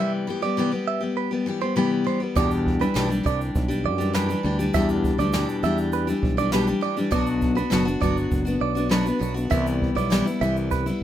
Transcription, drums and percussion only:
2.36 kick, shaker
2.51 shaker
2.66 kick
2.81 shaker
2.96 snare, shaker
3.12 shaker
3.26 kick, shaker
3.41 shaker
3.55 kick, shaker
3.71 shaker
4.00 shaker
4.14 snare, shaker
4.30 shaker
4.60 shaker
4.74 kick, shaker
4.89 shaker
5.04 kick, shaker
5.20 shaker
5.33 snare, shaker
5.49 shaker
5.64 shaker
5.78 shaker
5.92 shaker
6.08 shaker
6.23 kick
6.38 shaker
6.52 snare, shaker
6.67 shaker
6.97 shaker
7.11 kick, shaker
7.26 shaker
7.41 kick, shaker
7.57 shaker
7.71 snare, shaker
7.88 shaker
8.02 kick, shaker
8.17 shaker
8.32 kick, shaker
8.46 shaker
8.77 shaker
8.91 snare, shaker
9.06 shaker
9.22 shaker
9.37 shaker
9.52 kick, shaker
9.67 shaker
9.82 kick
9.97 shaker
10.12 snare, shaker
10.27 shaker
10.42 shaker
10.57 shaker
10.71 kick, shaker
10.87 shaker

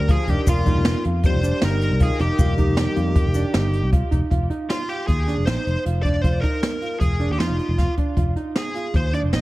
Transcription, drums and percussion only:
0.08 kick, closed hi-hat
0.27 kick, closed hi-hat
0.47 kick, closed hi-hat, shaker
0.66 kick, closed hi-hat
0.85 snare, closed hi-hat
1.04 closed hi-hat
1.23 kick, closed hi-hat, shaker
1.42 closed hi-hat, shaker
1.61 snare, closed hi-hat
1.81 closed hi-hat
2.00 kick, closed hi-hat
2.19 snare, closed hi-hat
2.38 kick, closed hi-hat, shaker
2.58 kick, closed hi-hat
2.77 snare, closed hi-hat
2.96 closed hi-hat
3.15 kick, closed hi-hat
3.34 closed hi-hat, shaker
3.54 snare, closed hi-hat
3.73 closed hi-hat
3.93 kick, closed hi-hat
4.12 kick, closed hi-hat
4.31 kick, closed hi-hat
4.50 closed hi-hat
4.70 snare, closed hi-hat
4.89 closed hi-hat
5.08 kick, closed hi-hat
5.28 snare, closed hi-hat
5.47 snare, closed hi-hat
5.67 closed hi-hat
5.86 closed hi-hat
6.05 kick, closed hi-hat
6.24 kick, closed hi-hat
6.43 kick, closed hi-hat
6.63 snare, closed hi-hat
6.82 closed hi-hat
7.01 kick, closed hi-hat
7.20 closed hi-hat
7.40 snare, closed hi-hat
7.59 closed hi-hat
7.78 kick, snare, closed hi-hat
7.98 kick, closed hi-hat
8.17 kick, closed hi-hat
8.36 closed hi-hat
8.56 snare, closed hi-hat
8.75 snare, closed hi-hat
8.94 kick, closed hi-hat
9.13 closed hi-hat
9.33 snare, closed hi-hat

